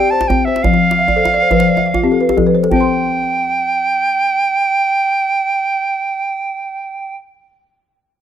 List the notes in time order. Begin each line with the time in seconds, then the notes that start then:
Already playing: G4 D5 G5
0.10 C5 A5, djembe slap
0.21 djembe slap, djembe tone
0.28 C4 G5, djembe slap, djembe bass
0.45 C5 E5, djembe slap
0.56 djembe slap
0.63 F3 F5, djembe slap, djembe bass
0.74 djembe slap, djembe tone
0.91 F5, djembe slap
0.99 E5, djembe slap
1.08 D5, djembe slap, djembe bass
1.16 A4 C5
1.24 E5, djembe slap, djembe tone
1.34 D5, djembe slap
1.42 C5
1.51 F3 B4, djembe slap, djembe bass
1.60 C5, djembe slap
1.68 D5
1.77 E5, djembe slap, djembe tone
1.86 F5
1.94 F4, djembe slap, djembe bass
2.03 C4 G4
2.12 A4, djembe slap
2.21 B4, djembe slap
2.29 G4, djembe slap, djembe tone
2.37 F3 A4, djembe bass
2.46 B4
2.55 C5
2.63 A4, djembe slap
2.71 C4 G5, djembe bass
2.76 C5
2.80 C6